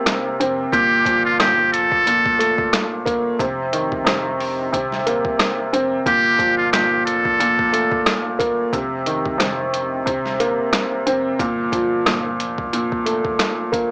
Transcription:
0.00 0.73 C3 medium
0.00 0.73 A#3 medium
0.06 cross-stick loud
0.06 snare loud
0.06 closed hi-hat medium
0.40 0.66 F1 medium
0.40 0.73 C4 medium
0.40 closed hi-hat medium
0.73 1.75 G1 loud
0.73 1.39 A#2 loud
0.73 1.22 G4 loud
0.73 kick loud
0.73 closed hi-hat medium
1.06 3.39 F3 medium
1.06 kick medium
1.06 closed hi-hat medium
1.25 1.38 F4 medium
1.40 2.05 A#2 medium
1.40 1.70 G4 medium
1.40 cross-stick medium
1.40 snare loud
1.40 closed hi-hat medium
1.72 2.55 F1 medium
1.72 2.88 A4 medium
1.72 closed hi-hat medium
1.92 kick medium
2.07 3.40 A#2 medium
2.07 closed hi-hat loud
2.26 kick medium
2.39 3.39 A3 medium
2.39 closed hi-hat medium
2.58 2.70 G1 medium
2.58 kick loud
2.73 cross-stick loud
2.73 snare loud
2.73 closed hi-hat medium
3.05 3.33 D#1 loud
3.05 3.39 A#3 loud
3.05 kick medium
3.05 closed hi-hat medium
3.39 4.69 F1 loud
3.39 4.03 C3 medium
3.39 kick loud
3.39 closed hi-hat medium
3.73 4.73 D#3 medium
3.73 closed hi-hat medium
3.92 kick medium
4.05 4.71 C3 medium
4.05 cross-stick medium
4.05 snare loud
4.05 closed hi-hat medium
4.41 open hi-hat medium
4.73 5.26 D#1 loud
4.73 6.06 C3 medium
4.73 kick medium
4.73 closed hi-hat loud
4.92 snare soft
5.06 6.06 A#3 medium
5.06 closed hi-hat medium
5.25 kick loud
5.39 cross-stick loud
5.39 snare loud
5.39 closed hi-hat medium
5.73 5.99 F1 medium
5.73 6.06 C4 medium
5.73 closed hi-hat medium
6.06 7.08 G1 loud
6.06 6.72 A#2 loud
6.06 6.56 G4 loud
6.06 kick loud
6.06 closed hi-hat loud
6.39 8.73 F3 medium
6.39 kick medium
6.39 closed hi-hat medium
6.57 6.71 F4 medium
6.72 7.38 A#2 medium
6.72 7.03 G4 medium
6.72 cross-stick medium
6.72 snare loud
6.72 closed hi-hat medium
7.05 7.88 F1 medium
7.05 8.21 A4 medium
7.05 closed hi-hat medium
7.25 kick medium
7.40 8.73 A#2 medium
7.40 closed hi-hat loud
7.59 kick medium
7.72 8.73 A3 medium
7.72 closed hi-hat medium
7.92 8.03 G1 loud
7.92 kick loud
8.06 cross-stick loud
8.06 snare loud
8.06 closed hi-hat medium
8.39 8.66 D#1 loud
8.39 8.72 A#3 medium
8.39 kick medium
8.39 closed hi-hat medium
8.73 10.02 F1 loud
8.73 9.37 C3 medium
8.73 kick loud
8.73 closed hi-hat medium
9.06 10.06 D#3 medium
9.06 closed hi-hat medium
9.25 kick medium
9.38 10.04 C3 medium
9.38 cross-stick medium
9.38 snare loud
9.38 closed hi-hat medium
9.74 closed hi-hat medium
10.06 10.59 D#1 loud
10.06 11.39 C3 medium
10.06 kick medium
10.06 closed hi-hat loud
10.25 snare soft
10.40 11.40 A#3 medium
10.40 closed hi-hat medium
10.73 cross-stick loud
10.73 snare loud
10.73 closed hi-hat medium
11.06 11.33 F1 medium
11.06 11.40 C4 medium
11.06 closed hi-hat medium
11.39 12.41 G1 loud
11.39 12.05 A#2 loud
11.39 kick loud
11.39 closed hi-hat medium
11.72 13.91 F3 medium
11.72 kick medium
11.72 closed hi-hat medium
12.06 12.72 A#2 medium
12.06 cross-stick medium
12.06 snare loud
12.06 closed hi-hat medium
12.40 13.21 F1 medium
12.40 closed hi-hat medium
12.58 kick medium
12.73 13.91 A#2 loud
12.73 closed hi-hat loud
12.92 kick medium
13.06 13.91 A3 medium
13.06 closed hi-hat medium
13.25 13.36 G1 medium
13.25 kick medium
13.39 cross-stick loud
13.39 snare loud
13.39 closed hi-hat medium
13.72 13.91 D#1 loud
13.72 13.91 A#3 medium
13.72 kick medium
13.72 closed hi-hat medium

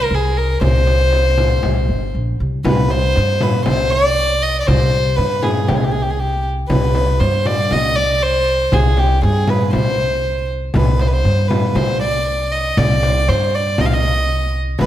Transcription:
0.00 0.15 A#4 medium
0.11 0.58 C2 medium
0.11 0.39 G#4 medium
0.37 0.62 A#4 medium
0.61 1.59 C2 medium
0.61 2.10 C5 medium
0.61 frame drum medium
0.87 frame drum medium
1.13 frame drum medium
1.38 frame drum medium
1.63 1.88 C2 medium
1.63 frame drum medium
1.89 2.11 G1 medium
2.15 2.37 A#1 medium
2.40 2.63 C2 medium
2.64 3.12 C2 loud
2.64 2.92 B4 medium
2.64 frame drum medium
2.90 3.44 C5 medium
2.90 frame drum medium
3.16 3.64 G2 medium
3.16 frame drum medium
3.41 3.65 B4 medium
3.41 frame drum medium
3.66 4.63 C2 medium
3.66 3.92 C5 medium
3.66 frame drum medium
3.91 4.44 D5 loud
4.43 4.60 D#5 medium
4.60 4.69 D5 medium
4.67 5.15 C2 loud
4.67 5.17 C5 medium
4.67 frame drum medium
5.16 5.66 G2 medium
5.16 5.45 B4 medium
5.16 frame drum medium
5.42 5.69 G#4 medium
5.42 frame drum medium
5.68 6.66 C2 medium
5.68 5.78 G4 medium
5.68 frame drum medium
5.76 5.86 G#4 medium
5.84 5.93 G4 medium
5.91 6.04 G#4 medium
6.02 6.12 G4 medium
6.10 6.21 G#4 medium
6.20 6.46 G4 medium
6.69 7.18 C2 loud
6.69 7.21 B4 medium
6.69 frame drum medium
6.95 frame drum medium
7.20 7.68 G2 medium
7.20 7.48 C5 medium
7.20 frame drum medium
7.46 7.74 D5 medium
7.46 frame drum medium
7.71 8.69 C2 medium
7.71 7.97 D#5 medium
7.71 frame drum medium
7.96 8.24 D5 medium
8.23 8.74 C5 medium
8.72 9.20 C2 loud
8.72 9.00 G#4 medium
8.72 frame drum medium
8.97 9.23 G4 medium
8.97 frame drum medium
9.22 9.71 G2 medium
9.22 9.51 G#4 medium
9.22 frame drum medium
9.47 9.73 B4 medium
9.47 frame drum medium
9.73 10.71 C2 medium
9.73 10.46 C5 medium
9.73 frame drum medium
10.74 11.23 C2 medium
10.74 11.03 B4 medium
10.74 frame drum medium
10.99 11.09 C5 medium
10.99 frame drum medium
11.08 11.14 B4 medium
11.13 11.50 C5 medium
11.25 11.73 G2 medium
11.25 frame drum medium
11.48 11.77 B4 medium
11.48 frame drum medium
11.75 12.73 C2 medium
11.75 12.00 C5 medium
11.75 frame drum medium
12.01 12.53 D5 medium
12.52 12.79 D#5 medium
12.77 13.25 C2 loud
12.77 13.30 D5 medium
12.77 frame drum medium
13.03 frame drum medium
13.28 13.76 G2 medium
13.28 13.56 C5 medium
13.28 frame drum medium
13.55 13.82 D5 medium
13.78 14.76 C2 medium
13.78 13.87 D#5 medium
13.78 frame drum medium
13.85 13.95 F5 medium
13.93 14.55 D#5 medium
14.79 14.86 C2 loud
14.79 14.86 B4 medium
14.79 frame drum medium

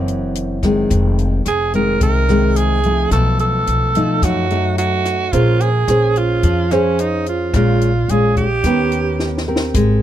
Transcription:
0.00 0.87 F#1 medium
0.00 0.88 F#2 medium
0.00 0.58 E3 medium
0.00 0.59 A#3 soft
0.00 0.59 C4 medium
0.08 closed hi-hat soft
0.35 closed hi-hat soft
0.63 1.42 D#3 soft
0.63 1.42 G#3 medium
0.63 1.42 C4 medium
0.63 kick soft
0.63 cross-stick medium
0.63 closed hi-hat soft
0.90 1.42 F1 medium
0.90 1.99 F2 soft
0.90 kick medium
0.90 closed hi-hat soft
1.19 closed hi-hat soft
1.46 1.97 F1 medium
1.46 1.73 G#4 medium
1.46 cross-stick medium
1.46 closed hi-hat soft
1.73 2.25 D#3 medium
1.73 2.25 G#3 medium
1.73 2.25 C4 medium
1.73 2.00 A#4 medium
1.73 closed hi-hat soft
2.01 3.08 C2 medium
2.01 3.09 C3 medium
2.01 2.58 A#4 medium
2.01 kick soft
2.01 closed hi-hat soft
2.29 2.80 D#3 medium
2.29 2.80 G#3 medium
2.29 2.80 C4 medium
2.29 cross-stick medium
2.29 closed hi-hat soft
2.56 3.12 G#4 medium
2.56 closed hi-hat soft
2.83 3.91 F3 medium
2.83 3.91 A3 medium
2.83 3.91 D#4 medium
2.83 closed hi-hat soft
3.11 3.63 B1 medium
3.11 4.20 B2 soft
3.11 3.38 A4 medium
3.11 kick medium
3.11 cross-stick medium
3.11 closed hi-hat soft
3.39 4.26 A4 medium
3.39 closed hi-hat soft
3.67 4.18 B1 medium
3.67 closed hi-hat soft
3.95 4.46 F3 medium
3.95 4.46 A3 soft
3.95 4.46 D#4 medium
3.95 closed hi-hat soft
4.22 5.29 F#2 medium
4.22 5.31 F#2 soft
4.22 4.77 F#4 medium
4.22 kick medium
4.22 cross-stick medium
4.22 closed hi-hat soft
4.50 5.29 A3 medium
4.50 5.29 D#4 medium
4.50 closed hi-hat soft
4.78 5.35 F#4 medium
4.78 closed hi-hat soft
5.05 cross-stick medium
5.05 closed hi-hat soft
5.33 5.84 A#1 medium
5.33 6.41 A#3 soft
5.33 5.68 C#4 soft
5.33 5.63 F4 medium
5.33 5.69 G#4 soft
5.33 5.69 C5 medium
5.33 kick medium
5.33 closed hi-hat soft
5.60 6.19 G#4 medium
5.60 closed hi-hat soft
5.88 6.39 A#1 medium
5.88 6.67 C#4 soft
5.88 6.67 G#4 medium
5.88 6.67 C5 medium
5.88 cross-stick medium
5.88 closed hi-hat soft
6.16 6.73 F4 medium
6.16 closed hi-hat soft
6.43 7.50 F2 medium
6.43 7.51 F3 medium
6.43 kick medium
6.43 closed hi-hat soft
6.71 7.52 C#4 medium
6.71 7.02 C#4 medium
6.71 7.52 G#4 medium
6.71 7.52 C5 medium
6.71 cross-stick medium
6.71 closed hi-hat soft
6.99 7.27 D#4 medium
6.99 closed hi-hat soft
7.26 7.53 F4 medium
7.26 closed hi-hat soft
7.53 8.05 A#1 loud
7.53 8.62 A#2 medium
7.53 7.90 G#3 soft
7.53 7.90 C#4 medium
7.53 7.90 F4 medium
7.53 8.12 F4 medium
7.53 kick medium
7.53 cross-stick medium
7.53 closed hi-hat soft
7.81 closed hi-hat soft
8.08 8.60 A#1 medium
8.08 8.45 G#3 medium
8.08 8.45 C#4 soft
8.08 8.46 F4 medium
8.08 8.37 G#4 medium
8.08 closed hi-hat soft
8.37 9.44 G4 medium
8.37 kick soft
8.37 closed hi-hat soft
8.64 9.71 D#2 medium
8.64 9.73 D#3 soft
8.64 9.43 B3 soft
8.64 9.44 C#4 soft
8.64 9.44 G4 medium
8.64 kick medium
8.64 cross-stick medium
8.64 closed hi-hat soft
8.92 closed hi-hat soft
9.20 snare soft
9.38 snare soft
9.48 10.02 C4 soft
9.48 10.02 G4 soft
9.48 10.02 A#4 medium
9.56 snare medium
9.74 10.02 G#1 medium
9.74 10.02 G#3 soft
9.74 kick medium
9.74 closed hi-hat medium

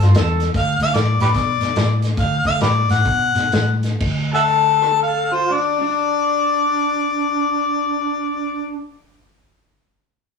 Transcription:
0.00 0.12 G2 medium
0.00 0.15 F4 medium
0.00 snare soft
0.00 closed hi-hat medium
0.14 0.48 E2 medium
0.14 0.47 A4 loud
0.14 snare loud
0.14 closed hi-hat medium
0.40 snare soft
0.40 closed hi-hat medium
0.54 0.76 D2 loud
0.54 0.80 F5 medium
0.54 kick loud
0.54 snare soft
0.54 closed hi-hat medium
0.80 0.92 D2 medium
0.80 0.98 F5 medium
0.80 snare soft
0.80 closed hi-hat medium
0.94 1.16 A2 medium
0.94 1.20 D5 medium
0.94 snare loud
0.94 closed hi-hat loud
1.20 1.32 A2 medium
1.20 1.28 G4 medium
1.20 1.30 B4 medium
1.20 2.01 D5 medium
1.20 snare soft
1.20 closed hi-hat medium
1.34 1.56 B2 loud
1.34 kick medium
1.34 snare soft
1.34 closed hi-hat medium
1.60 1.73 B2 medium
1.60 snare soft
1.60 closed hi-hat medium
1.76 2.10 A2 medium
1.76 snare loud
1.76 closed hi-hat medium
2.02 snare soft
2.02 closed hi-hat medium
2.17 2.40 D2 loud
2.17 2.45 F5 medium
2.17 kick loud
2.17 snare soft
2.17 closed hi-hat medium
2.45 2.58 D2 medium
2.45 2.61 F5 medium
2.45 kick medium
2.45 snare soft
2.45 closed hi-hat medium
2.60 2.84 A2 medium
2.60 2.70 G4 medium
2.60 2.68 B4 medium
2.60 2.89 D5 medium
2.60 snare loud
2.60 closed hi-hat medium
2.89 3.03 A2 medium
2.89 3.81 F#5 medium
2.89 snare soft
2.89 closed hi-hat medium
3.05 3.30 B2 medium
3.05 kick loud
3.05 closed hi-hat medium
3.35 3.49 B2 medium
3.35 snare soft
3.35 closed hi-hat medium
3.52 3.92 A2 medium
3.52 snare loud
3.52 closed hi-hat medium
3.83 snare soft
3.83 closed hi-hat medium
4.00 8.29 D2 loud
4.00 kick loud
4.00 crash medium
4.33 5.29 A4 loud
4.33 4.42 E5 medium
4.33 4.41 F#5 medium
4.33 4.99 A5 loud
4.82 cross-stick medium
5.03 5.36 F5 medium
5.32 5.49 F4 medium
5.32 5.55 C5 medium
5.50 5.80 D4 medium
5.50 8.76 D5 medium
5.81 8.74 D4 medium

